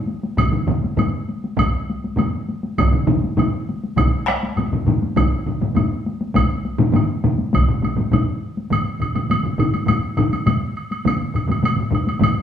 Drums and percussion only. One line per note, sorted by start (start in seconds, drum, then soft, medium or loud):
0.07 taiko high soft
0.23 taiko high medium
0.37 taiko loud
0.37 taiko low-mid medium
0.37 taiko mid medium
0.37 taiko high medium
0.37 high woodblock medium
0.52 taiko low-mid medium
0.52 taiko mid medium
0.67 taiko low-mid medium
0.67 taiko mid medium
0.67 taiko high medium
0.84 taiko high soft
0.97 taiko low-mid medium
0.97 taiko mid medium
0.97 taiko high medium
0.97 high woodblock soft
1.29 taiko high soft
1.44 taiko high soft
1.57 taiko loud
1.57 taiko low-mid medium
1.57 taiko mid loud
1.57 taiko high medium
1.57 high woodblock medium
1.90 taiko high soft
2.04 taiko high soft
2.17 taiko low-mid medium
2.17 taiko mid medium
2.17 taiko high medium
2.17 high woodblock soft
2.49 taiko high soft
2.63 taiko high soft
2.78 taiko loud
2.78 taiko low-mid medium
2.78 taiko mid medium
2.78 taiko high medium
2.78 high woodblock medium
2.92 taiko low-mid medium
2.92 taiko mid medium
3.07 taiko low-mid loud
3.07 taiko mid medium
3.07 taiko high medium
3.24 taiko high medium
3.37 taiko low-mid medium
3.37 taiko mid medium
3.37 taiko high medium
3.37 high woodblock soft
3.69 taiko high soft
3.84 taiko high soft
3.96 taiko loud
3.96 taiko low-mid medium
3.96 taiko mid loud
3.96 taiko high medium
3.96 high woodblock medium
4.26 taiko rim medium
4.26 taiko high soft
4.28 taiko rim medium
4.43 taiko high medium
4.56 taiko low-mid medium
4.56 taiko mid medium
4.56 taiko high medium
4.56 high woodblock soft
4.72 taiko low-mid medium
4.72 taiko mid medium
4.86 taiko low-mid medium
4.86 taiko mid medium
4.86 taiko high medium
5.02 taiko high medium
5.16 taiko loud
5.16 taiko low-mid loud
5.16 taiko mid medium
5.16 taiko high medium
5.16 high woodblock medium
5.46 taiko low-mid medium
5.46 taiko mid medium
5.61 taiko low-mid medium
5.61 taiko mid medium
5.61 taiko high medium
5.76 taiko low-mid loud
5.76 taiko mid medium
5.76 taiko high medium
5.76 high woodblock soft
6.06 taiko high medium
6.21 taiko high medium
6.34 taiko medium
6.34 taiko low-mid medium
6.34 taiko mid loud
6.34 taiko high medium
6.34 high woodblock medium
6.65 taiko high medium
6.79 taiko low-mid medium
6.79 taiko mid medium
6.79 taiko high medium
6.93 taiko low-mid medium
6.93 taiko mid loud
6.93 taiko high medium
6.93 high woodblock soft
7.24 taiko low-mid medium
7.24 taiko mid medium
7.24 taiko high medium
7.38 taiko high medium
7.53 taiko medium
7.53 taiko low-mid medium
7.53 taiko mid medium
7.53 taiko high medium
7.53 high woodblock soft
7.68 taiko low-mid medium
7.68 taiko mid medium
7.82 taiko low-mid medium
7.82 taiko mid medium
7.82 taiko high medium
7.82 high woodblock soft
7.97 taiko low-mid medium
7.97 taiko mid medium
7.97 taiko high medium
8.12 taiko low-mid medium
8.12 taiko mid medium
8.12 taiko high medium
8.12 high woodblock soft
8.57 taiko high soft
8.70 taiko low-mid medium
8.70 taiko mid medium
8.70 taiko high medium
8.70 high woodblock soft
9.00 taiko low-mid medium
9.00 taiko mid medium
9.00 high woodblock soft
9.15 taiko low-mid medium
9.15 taiko mid medium
9.15 taiko high soft
9.15 high woodblock soft
9.30 taiko low-mid medium
9.30 taiko mid medium
9.30 taiko high medium
9.30 high woodblock soft
9.43 taiko low-mid medium
9.43 taiko mid medium
9.58 taiko low-mid medium
9.58 taiko mid medium
9.58 high woodblock soft
9.74 taiko high soft
9.74 high woodblock soft
9.87 taiko low-mid medium
9.87 taiko mid medium
9.87 taiko high medium
9.87 high woodblock medium
10.17 taiko low-mid medium
10.17 taiko mid medium
10.17 high woodblock soft
10.33 taiko high soft
10.33 high woodblock soft
10.46 taiko low-mid medium
10.46 taiko mid medium
10.46 taiko high medium
10.46 high woodblock soft
10.77 high woodblock soft
10.91 taiko high soft
10.91 high woodblock soft
11.05 taiko low-mid medium
11.05 taiko mid medium
11.05 taiko high medium
11.05 high woodblock medium
11.34 taiko low-mid medium
11.34 taiko mid medium
11.34 high woodblock soft
11.47 taiko low-mid medium
11.47 taiko mid medium
11.47 taiko high medium
11.52 high woodblock soft
11.62 taiko low-mid medium
11.62 taiko mid medium
11.62 taiko high medium
11.62 high woodblock medium
11.76 taiko low-mid medium
11.76 taiko mid medium
11.91 taiko low-mid medium
11.91 taiko mid medium
11.95 high woodblock soft
12.07 taiko high medium
12.07 high woodblock soft
12.19 taiko low-mid medium
12.19 taiko mid medium
12.19 taiko high medium
12.24 high woodblock medium